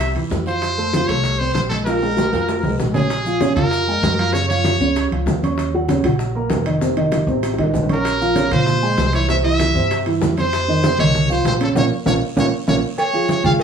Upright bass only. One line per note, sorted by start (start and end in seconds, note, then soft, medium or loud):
0.00 0.13 C2 medium
0.15 0.30 E2 medium
0.31 1.03 F2 medium
1.09 1.52 C2 medium
1.55 2.27 A#1 medium
2.33 2.62 F2 medium
2.64 2.78 C2 medium
2.79 3.51 A#1 medium
3.56 4.00 F2 medium
4.03 4.75 F#2 medium
4.81 5.09 C#2 medium
5.11 5.25 C#2 medium
5.26 5.98 D#2 medium
6.04 6.47 A#1 loud
6.50 7.22 F1 medium
7.27 7.56 A1 medium
7.59 7.73 A1 medium
7.74 8.46 A#1 medium
8.51 8.94 A#2 loud
8.98 9.70 C2 loud
9.75 10.18 G2 loud
10.22 10.93 F2 medium
10.99 11.42 C2 loud
11.45 11.73 A#1 medium
11.75 11.87 A#1 medium
12.06 12.18 A#1 loud
12.36 12.48 A#1 medium
12.68 12.80 A#1 medium
13.44 13.63 G#1 loud